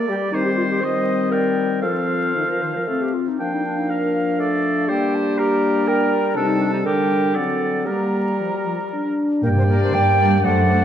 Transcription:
Already playing: A#3 D5
0.07 G3 G4
0.32 D#3 G3 C4 D#4 C5
0.46 G4
0.57 F4
0.71 G4
0.81 G3 C4 C5 D#5
1.31 A#4 D5 G5
1.82 F3 C4 A4 C5 F5
2.35 D#3
2.49 F3 A#4
2.61 D#3 C5
2.75 F3 A#4
2.88 A3 C4 A4
3.02 G4
3.14 F4
3.29 D#4
3.39 F3 A#3 D4 F5 G5
3.53 D#4
3.65 D4
3.78 D#4
3.90 A#4 F5
4.39 A3 A4 D5
4.88 G3 A#3 G4 C5 G5
5.15 A5
5.38 G4 A#4 A#5
5.88 A#4 G5
6.35 C3 G3 D4 D#4 A4 A5
6.48 D#4
6.60 D4
6.74 D#4
6.85 D3 G3 D4 G4 A#4 G5
7.35 D3 F#3 C4 A4 D5 F#5
7.86 G3 A#3 G4 A#4 A#5
8.39 F3
8.53 G3
8.65 F3
8.80 G3
8.92 D4
9.43 G2 A#2 A#3 G4 A#4 D5 G5
9.56 C3 C5
9.68 A#2 A#3 D4 A#4 D5
9.81 C3 C5
9.93 G2 G3 A#3 D5 G5
10.18 A#3 D4 D5
10.43 F#2 F#3 A3 D4 A4 C5 D5 F#5
10.69 A3 D4 C5

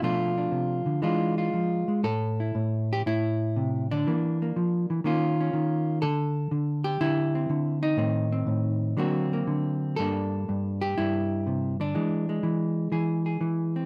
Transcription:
0.02 B2 F3 A3 D4 F4
0.38 D4
0.52 C3
0.86 D3
1.02 E3 G#3 D4 F4
1.38 F4
1.54 F3
1.88 G#3
2.04 A2 A4
2.40 E4
2.55 A2
2.93 G4
3.06 A2 E4
3.56 C3
3.91 D3 D4
4.07 E3 A#3
4.42 A#3
4.56 F3
4.90 E3
5.04 D#3 A#3 C#4 F4
5.41 C#4
5.53 D#3
6.02 D3 A4
6.51 D3
6.84 G4
7.01 D3 E4
7.35 C4
7.49 D3
7.83 D#4
7.97 A2 D#3 C4
8.32 C4
8.47 A2
8.97 D3 F#3 A#3 C4 F#4
9.33 A#3
9.47 D3
9.96 G2 G3 A#3 A4
10.00 D4
10.49 G2
10.81 G4
10.98 G2 E4
11.47 C3
11.80 D3 D4
11.95 E3 G#3
12.29 G#3
12.43 E3
12.92 E3 G#4
13.26 G#4
13.41 E3
13.76 C4

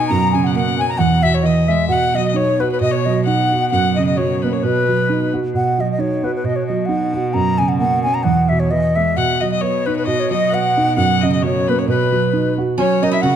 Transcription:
Already playing: B2 G#5
0.07 F#2 A#5
0.32 C#3 G#5
0.44 F#5
0.54 A#3 F#5
0.78 C#4 G#5
0.89 A#5
0.98 E2 F#5
1.23 B2 E5
1.34 C#5
1.43 E3 D#5
1.68 G#3 E5
1.88 B2 F#5
1.92 F#5
2.14 F#3 D#5
2.24 D#5
2.34 D#4 C#5
2.60 F#4 B4
2.72 B4
2.80 B2 D#5
2.91 C#5
3.05 F#3 D#5
3.25 D#4 F#5
3.52 F#4
3.70 F#2 F#5
3.95 C#3 D#5
4.06 D#5
4.17 F#3 C#5
4.42 A#3 B4
4.52 C#5
4.63 B2 B4
4.89 F#3
5.09 D#4
5.34 F#4
5.52 B2 F#5
5.78 F#3 D#5
5.92 D#5
5.99 D#4 C#5
6.23 F#4 B4
6.36 B4
6.44 B2 D#5
6.56 C#5
6.67 F#3 D#5
6.86 D#4 F#5
7.14 F#4
7.34 F#2 A#5
7.58 C#3 G#5
7.68 F#5
7.78 A#3 F#5
8.03 C#4 G#5
8.14 A#5
8.23 E2 F#5
8.49 B2 E5
8.60 C#5
8.71 E3 D#5
8.96 G#3 E5
9.15 B2 F#5
9.41 F#3 D#5
9.51 D#5
9.61 B3 C#5
9.86 D#4 B4
9.96 B4
10.06 B2 D#5
10.20 C#5
10.30 F#3 D#5
10.49 B3 F#5
10.54 F#5
10.77 D#4
10.96 F#2 F#5
11.21 C#3 D#5
11.32 D#5
11.43 F#3 C#5
11.67 A#3 B4
11.79 C#5
11.88 B2 B4
12.12 F#3
12.33 D#4
12.58 F#4
12.78 F#3 C#4 C#5
13.02 C#4 D#4 F#4 A#4 D#5
13.11 E4 E5
13.21 C#3 F#4 F#5

